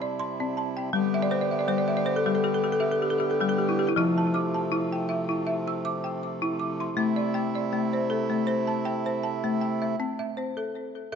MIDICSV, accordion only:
0, 0, Header, 1, 2, 480
1, 0, Start_track
1, 0, Key_signature, 0, "major"
1, 0, Tempo, 754717
1, 599, Time_signature, 4, 2, 24, 8
1, 7093, End_track
2, 0, Start_track
2, 0, Title_t, "Accordion"
2, 0, Program_c, 0, 21
2, 0, Note_on_c, 0, 48, 71
2, 0, Note_on_c, 0, 55, 67
2, 0, Note_on_c, 0, 64, 81
2, 570, Note_off_c, 0, 64, 0
2, 575, Note_off_c, 0, 48, 0
2, 579, Note_off_c, 0, 55, 0
2, 598, Note_on_c, 0, 67, 89
2, 600, Note_on_c, 0, 59, 73
2, 601, Note_on_c, 0, 50, 78
2, 2499, Note_off_c, 0, 67, 0
2, 2500, Note_off_c, 0, 50, 0
2, 2500, Note_off_c, 0, 59, 0
2, 2515, Note_on_c, 0, 57, 72
2, 2516, Note_on_c, 0, 53, 87
2, 2517, Note_on_c, 0, 48, 86
2, 4416, Note_off_c, 0, 53, 0
2, 4433, Note_on_c, 0, 64, 89
2, 6329, Note_off_c, 0, 57, 0
2, 6330, Note_off_c, 0, 48, 0
2, 6335, Note_off_c, 0, 64, 0
2, 7093, End_track
0, 0, End_of_file